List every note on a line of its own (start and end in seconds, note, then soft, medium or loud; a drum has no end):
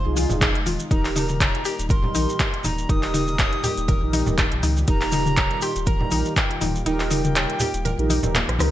0.00 0.87 C3 medium
0.00 0.87 F3 medium
0.00 0.87 G#3 medium
0.00 4.84 D#4 medium
0.00 0.87 F4 medium
0.00 0.42 C6 loud
0.06 0.26 C2 medium
0.06 0.39 D#4 medium
0.06 0.39 F4 medium
0.06 0.39 G#4 medium
0.16 0.30 F4 medium
0.16 open hi-hat medium
0.16 high conga loud
0.16 maracas loud
0.29 0.68 F1 loud
0.29 low conga loud
0.29 maracas medium
0.40 0.50 D#4 medium
0.40 0.50 F4 medium
0.40 0.49 G#4 medium
0.40 0.50 G#4 loud
0.40 kick loud
0.40 clap loud
0.40 closed hi-hat medium
0.40 high conga medium
0.40 low conga loud
0.40 maracas soft
0.55 closed hi-hat soft
0.66 0.78 D#1 loud
0.66 0.78 F4 medium
0.66 open hi-hat medium
0.66 high conga loud
0.66 maracas medium
0.79 closed hi-hat soft
0.79 maracas medium
0.91 1.51 D#1 medium
0.91 8.71 A#2 medium
0.91 8.71 D#3 medium
0.91 8.71 G3 medium
0.91 1.03 D#4 medium
0.91 1.26 D#4 medium
0.91 1.26 G4 medium
0.91 8.71 G4 medium
0.91 1.26 A#4 loud
0.91 1.15 A#5 medium
0.91 kick loud
0.91 closed hi-hat medium
0.91 high conga medium
0.91 maracas soft
1.05 clap medium
1.05 open hi-hat soft
1.16 1.29 D#4 medium
1.16 1.87 A#5 medium
1.16 open hi-hat medium
1.16 mid tom medium
1.16 maracas loud
1.29 1.63 D#4 medium
1.29 1.63 G4 medium
1.29 1.63 A#4 medium
1.29 mid tom medium
1.29 maracas medium
1.40 1.48 C#5 medium
1.40 kick loud
1.40 clap loud
1.40 closed hi-hat medium
1.40 maracas soft
1.55 closed hi-hat soft
1.65 1.74 D#4 medium
1.65 1.78 G4 loud
1.65 1.74 G4 medium
1.65 1.74 A#4 medium
1.65 open hi-hat medium
1.65 maracas medium
1.79 2.12 D#1 medium
1.79 closed hi-hat soft
1.79 maracas medium
1.89 2.02 A#4 medium
1.89 2.66 C6 loud
1.89 kick loud
1.89 closed hi-hat medium
1.89 high conga medium
1.89 maracas soft
2.04 2.37 D#4 medium
2.04 2.38 G4 medium
2.04 2.38 A#4 medium
2.04 low conga loud
2.15 2.26 A#1 medium
2.15 2.28 D#4 medium
2.15 open hi-hat medium
2.15 high conga loud
2.15 maracas loud
2.29 maracas medium
2.39 2.48 D#4 medium
2.39 2.47 G4 medium
2.39 2.48 G4 medium
2.39 2.48 A#4 loud
2.39 kick loud
2.39 clap loud
2.39 closed hi-hat medium
2.39 maracas soft
2.54 closed hi-hat soft
2.64 2.86 D#1 loud
2.64 2.77 D#4 medium
2.64 2.91 A#5 loud
2.64 open hi-hat medium
2.64 high conga loud
2.64 low conga medium
2.64 maracas medium
2.78 maracas medium
2.89 3.49 D#1 loud
2.89 3.02 D#4 medium
2.89 3.25 D#4 medium
2.89 3.25 G4 medium
2.89 3.25 A#4 loud
2.89 4.38 D#6 loud
2.89 kick loud
2.89 closed hi-hat medium
2.89 high conga medium
2.89 maracas soft
3.03 clap medium
3.03 open hi-hat soft
3.14 3.27 D#4 medium
3.14 open hi-hat medium
3.14 mid tom medium
3.14 maracas medium
3.27 3.61 D#4 medium
3.27 3.61 G4 medium
3.27 3.61 A#4 medium
3.27 maracas soft
3.39 3.46 C#5 medium
3.39 kick loud
3.39 clap loud
3.39 closed hi-hat medium
3.39 maracas soft
3.53 closed hi-hat soft
3.64 3.72 D#4 medium
3.64 3.76 G4 loud
3.64 3.72 G4 medium
3.64 3.72 A#4 medium
3.64 open hi-hat medium
3.64 low conga medium
3.64 maracas medium
3.77 3.98 D#1 loud
3.77 closed hi-hat soft
3.77 maracas soft
3.88 4.01 A#4 medium
3.88 kick loud
3.88 closed hi-hat medium
3.88 high conga medium
3.88 low conga medium
3.88 maracas soft
4.02 4.22 A#1 loud
4.02 4.36 D#4 medium
4.02 4.36 G4 medium
4.02 4.36 A#4 medium
4.13 4.26 D#4 medium
4.13 open hi-hat medium
4.13 high conga loud
4.13 maracas medium
4.26 4.47 D#1 loud
4.26 low conga loud
4.26 maracas soft
4.38 4.46 D#4 medium
4.38 4.46 G4 medium
4.38 4.46 A#4 loud
4.38 kick loud
4.38 clap loud
4.38 closed hi-hat medium
4.38 high conga medium
4.38 low conga medium
4.38 maracas soft
4.51 4.61 A#1 medium
4.51 closed hi-hat soft
4.63 4.84 C#2 loud
4.63 4.75 D#4 medium
4.63 open hi-hat medium
4.63 high conga loud
4.63 maracas medium
4.77 maracas medium
4.87 5.47 D#1 loud
4.87 5.00 D#4 medium
4.87 5.23 D#4 medium
4.87 8.71 F4 medium
4.87 5.23 G4 medium
4.87 5.23 A#4 loud
4.87 5.64 A#5 loud
4.87 kick loud
4.87 closed hi-hat medium
4.87 high conga medium
4.87 maracas soft
5.01 clap medium
5.01 open hi-hat soft
5.12 5.26 D#4 medium
5.12 open hi-hat medium
5.12 mid tom medium
5.12 maracas medium
5.26 5.60 D#4 medium
5.26 5.59 G4 medium
5.26 5.59 A#4 medium
5.26 mid tom medium
5.26 maracas soft
5.37 5.45 C#5 medium
5.37 kick loud
5.37 clap loud
5.37 closed hi-hat medium
5.37 maracas soft
5.51 closed hi-hat soft
5.61 5.70 D#4 medium
5.61 5.74 G4 loud
5.61 5.70 G4 medium
5.61 5.70 A#4 medium
5.61 5.89 C6 loud
5.61 open hi-hat medium
5.61 maracas medium
5.76 6.09 D#1 medium
5.76 closed hi-hat soft
5.76 maracas soft
5.86 5.99 A#4 medium
5.86 6.36 A#5 loud
5.86 kick loud
5.86 closed hi-hat medium
5.86 high conga medium
5.86 maracas soft
6.01 6.34 D#4 medium
6.01 6.34 G4 medium
6.01 6.34 A#4 medium
6.01 low conga loud
6.11 6.23 A#1 medium
6.11 6.25 D#4 medium
6.11 open hi-hat medium
6.11 high conga loud
6.11 maracas medium
6.25 maracas medium
6.36 6.45 D#4 medium
6.36 6.44 G4 medium
6.36 6.45 G4 medium
6.36 6.45 A#4 loud
6.36 6.83 G5 loud
6.36 kick loud
6.36 clap loud
6.36 closed hi-hat medium
6.36 maracas soft
6.51 closed hi-hat soft
6.61 6.83 D#1 loud
6.61 6.73 D#4 medium
6.61 open hi-hat medium
6.61 high conga loud
6.61 low conga medium
6.61 maracas medium
6.75 maracas soft
6.86 7.46 D#1 medium
6.86 6.98 D#4 medium
6.86 7.21 D#4 medium
6.86 7.21 G4 medium
6.86 7.21 A#4 loud
6.86 8.31 G5 loud
6.86 closed hi-hat medium
6.86 high conga medium
6.86 maracas soft
7.00 clap medium
7.00 open hi-hat soft
7.11 7.24 D#4 medium
7.11 open hi-hat loud
7.11 mid tom medium
7.11 maracas medium
7.24 7.58 D#4 medium
7.24 7.58 G4 medium
7.24 7.58 A#4 medium
7.24 closed hi-hat soft
7.24 mid tom medium
7.24 maracas medium
7.36 7.43 C#5 medium
7.36 clap loud
7.36 closed hi-hat medium
7.36 maracas soft
7.50 closed hi-hat soft
7.60 7.69 D#4 medium
7.60 7.73 G4 loud
7.60 7.68 G4 medium
7.60 7.68 A#4 medium
7.60 open hi-hat medium
7.60 low conga medium
7.60 maracas medium
7.74 7.94 D#1 loud
7.74 closed hi-hat soft
7.74 maracas medium
7.85 7.97 A#4 medium
7.85 closed hi-hat medium
7.85 high conga medium
7.85 low conga medium
7.85 maracas soft
7.98 8.19 A#1 loud
7.98 8.21 D#4 medium
7.98 8.21 G4 medium
7.98 8.21 A#4 medium
7.98 closed hi-hat soft
8.10 8.23 D#4 medium
8.10 open hi-hat medium
8.10 high conga loud
8.10 maracas medium
8.23 8.44 D#1 loud
8.23 8.34 D#4 medium
8.23 8.34 G4 medium
8.23 8.34 A#4 medium
8.23 closed hi-hat soft
8.23 low conga loud
8.23 maracas medium
8.34 8.48 A#3 loud
8.34 clap loud
8.34 closed hi-hat medium
8.34 high conga medium
8.34 low conga loud
8.34 maracas soft
8.49 8.58 A#1 medium
8.49 cross-stick medium
8.49 closed hi-hat soft
8.59 8.71 C#2 loud
8.59 8.71 D#4 medium
8.59 8.71 G4 medium
8.59 8.71 A#4 medium
8.59 cross-stick medium
8.59 open hi-hat medium
8.59 high conga loud
8.59 maracas medium